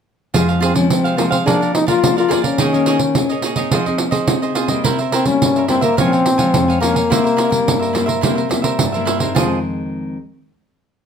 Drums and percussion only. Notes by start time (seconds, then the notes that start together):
0.34 pandeiro
0.49 pandeiro
0.62 pandeiro
0.75 pandeiro
0.90 pandeiro
1.05 pandeiro
1.18 pandeiro
1.32 pandeiro
1.47 pandeiro
1.62 pandeiro
1.75 pandeiro
1.88 pandeiro
2.04 pandeiro
2.18 pandeiro
2.31 pandeiro
2.44 pandeiro
2.58 pandeiro
2.74 pandeiro
2.86 pandeiro
2.99 pandeiro
3.15 pandeiro
3.29 pandeiro
3.42 pandeiro
3.56 pandeiro
3.71 pandeiro
3.86 pandeiro
3.98 pandeiro
4.12 pandeiro
4.27 pandeiro
4.43 pandeiro
4.55 pandeiro
4.68 pandeiro
4.84 pandeiro
4.99 pandeiro
5.12 pandeiro
5.25 pandeiro
5.42 pandeiro
5.56 pandeiro
5.68 pandeiro
5.82 pandeiro
5.98 pandeiro
6.13 pandeiro
6.26 pandeiro
6.39 pandeiro
6.54 pandeiro
6.70 pandeiro
6.83 pandeiro
6.96 pandeiro
7.12 pandeiro
7.27 pandeiro
7.38 pandeiro
7.52 pandeiro
7.68 pandeiro
7.82 pandeiro
7.95 pandeiro
8.09 pandeiro
8.23 pandeiro
8.38 pandeiro
8.51 pandeiro
8.64 pandeiro
8.79 pandeiro
8.94 pandeiro
9.07 pandeiro
9.20 pandeiro
9.36 pandeiro